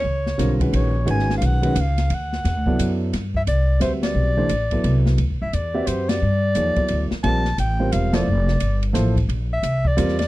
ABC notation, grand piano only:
X:1
M:3/4
L:1/8
Q:"Swing" 1/4=175
K:Dblyd
V:1 name="Grand piano"
z2 [=D,G,CFB] [E,A,_D_G_c]2 z | [E,A,D_G_c]3 [E,A,DGc] z2 | z3 [^F,=B,=E=A=d]3 | [K:G] z4 [G,CFBe]2- |
[G,CFBe] [E,A,DGc] z [F,B,EAB]3 | z3 [CFGBe]3 | z2 [=F,_B,_E_A^c] [^F,=B,=E=Ad]2 z | [G,C=F_Bd] z2 [G,CFBc]2 [=F,_B,EAc] |
z4 [=F,_B,EAc] z | z4 [G,C=F_Bd] z |]